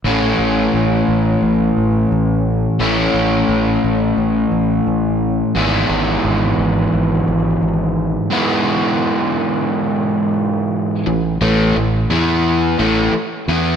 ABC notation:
X:1
M:4/4
L:1/8
Q:1/4=87
K:A
V:1 name="Overdriven electric guitar" clef=bass
[A,,E,A,CE]8 | [A,,E,A,CE]8 | [G,,E,G,B,E]8 | [G,,E,G,B,E]8 |
[A,,E,] [A,,E,A,] [A,,E,] [E,B,E]2 [A,,E,A,] z [E,B,E] |]
V:2 name="Fingered electric bass" clef=bass
A,,, A,,, A,,, A,,, A,,, A,,, A,,,2 | A,,, A,,, A,,, A,,, A,,, A,,, A,,,2 | G,,, G,,, G,,, G,,, G,,, G,,, G,,,2 | z8 |
A,,, A,,, A,,, E,,2 A,,, z E,, |]